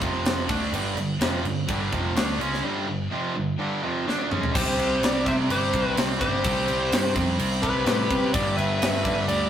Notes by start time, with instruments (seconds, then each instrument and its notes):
0.01 picked electric bass F1, distorted electric guitar F2 C3 F3, kick, crash
0.25 snare, crash
0.49 picked electric bass D2, distorted electric guitar D3 A3 D4, kick, crash
0.71 picked electric bass G1, distorted electric guitar G2 D3 G3, crash
0.95 picked electric bass G1, distorted electric guitar G2 D3, crash
1.19 picked electric bass F1, distorted electric guitar F2 C3 F3, snare, crash
1.44 picked electric bass G1, distorted electric guitar G2 D3, crash
1.68 picked electric bass G1, distorted electric guitar G2 D3 G3, kick, crash
1.92 picked electric bass F1, distorted electric guitar F2 C3 F3, kick, crash
2.14 picked electric bass D2, distorted electric guitar D3 A3 D4, snare, crash
2.39 picked electric bass C#2, distorted electric guitar C#3 G#3 C#4, crash
2.54 snare
2.64 distorted electric guitar G2 D3 G3
2.88 distorted electric guitar G2 D3
3.12 distorted electric guitar F2 C3 F3
3.36 distorted electric guitar G2 D3
3.59 distorted electric guitar G2 D3 G3
3.82 distorted electric guitar F2 C3 F3
4.07 distorted electric guitar D3 A3 D4, snare
4.30 distorted electric guitar C#3 G#3 C#4, mid tom
4.43 floor tom
4.53 picked electric bass C2, distorted electric guitar C3 G3 C4, lead electric guitar G4 C5, kick, crash
4.77 picked electric bass C2, crash
5.02 picked electric bass C2, lead electric guitar G4 D5, snare, crash
5.25 picked electric bass C3, distorted electric guitar C3 G3 C4, lead electric guitar C5 E5, kick, crash
5.49 picked electric bass G1, lead electric guitar G4 C5, crash
5.73 picked electric bass C2, distorted electric guitar C3 G3 C4, kick, crash
5.83 lead electric guitar B4
5.96 picked electric bass C2, distorted electric guitar C3 G3 C4, snare, crash
6.19 picked electric bass G1, lead electric guitar G4 C5, kick, crash
6.43 picked electric bass C2, distorted electric guitar C3 G3 C4, kick, crash
6.68 picked electric bass C2, crash
6.92 picked electric bass G2, snare, crash
7.14 picked electric bass F2, distorted electric guitar C3 G3 C4, kick, crash
7.38 picked electric bass C2, crash
7.61 picked electric bass C2, distorted electric guitar C3 G3 C4, lead electric guitar G4 B4, kick, crash
7.85 picked electric bass A2, distorted electric guitar C3 G3 C4, snare, crash
8.11 picked electric bass C3, kick, crash
8.32 picked electric bass G1, distorted electric guitar G2 D3 G3, lead electric guitar G4 D5, kick, crash
8.56 picked electric bass G1, lead electric guitar B4 E5, crash
8.81 picked electric bass G1, snare, crash
9.03 picked electric bass G2, distorted electric guitar G2 D3 G3, kick, crash
9.28 picked electric bass D2, lead electric guitar G4 D5, crash